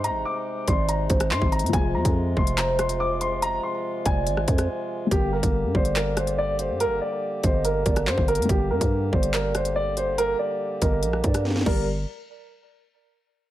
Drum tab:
CC |------------------------------------------------------------------------------------------------|------------------------------------------------------------------------------------------------|------------------------------------------------------------------------------------------------|------------------------------------------------------------------------------------------------|
HH |x-----------------------------------x-----------x-----------x-----x-----------------x---x---x---|x-----------------x-----------------------x-----x-----------x-----x-----------------x-----------|x-----------------------------------x-----------x-----------x-----x-----------------------------|x-----------------x-----------------------x-----x-----------x-----x-----------------x-----------|
CP |------------------------------------------------------------------------x-----------------------|------------------------------------------------x-----------------------------------------------|------------------------------------------------------------------------------------------------|------------------------------------------------x-----------------------------------------------|
SD |------------------------------------------------------------------r-----------------------------|------------------------------------------------------------r-----------------------------------|------------------------------------------------------r-----------r-----------------------------|------------------------------------------------------------r-----------------------------------|
BD |------------------------------------o-----------------------o-----------------o-----------------|o-----------------o-----------------o-----------------------------------------------------------|------------------------------------o-----------------------o-----------------------------------|o-----------------o-----------------o-----------------------------------------------------------|

CC |------------------------------------------------------------------------------------------------|------------------------------------------------------------------------------------------------|------------------------------------------------------------------------------------x-----------|------------------------------------------------------------------------------------------------|
HH |x-----------------------------------x-----------x-----------x-----x-----------------x---x---x---|x-----------------x-----------------------x-----x-----------x-----x-----------------x-----------|x-----------------------------------x-----------x-----------x-----x-----------------------------|------------------------------------------------------------------------------------------------|
CP |------------------------------------------------------------------------x-----------------------|------------------------------------------------x-----------------------------------------------|------------------------------------------------------------------------------------------------|------------------------------------------------------------------------------------------------|
SD |------------------------------------------------------------------r-----------------------------|------------------------------------------------------------r-----------------------------------|------------------------------------------------------r-----------r-----o--o--o--o--------------|------------------------------------------------------------------------------------------------|
BD |------------------------------------o-----------------------o-----------------o-----------------|o-----------------o-----------------o-----------------------------------------------------------|------------------------------------o-----------------------o-----------------------o-----------|------------------------------------------------------------------------------------------------|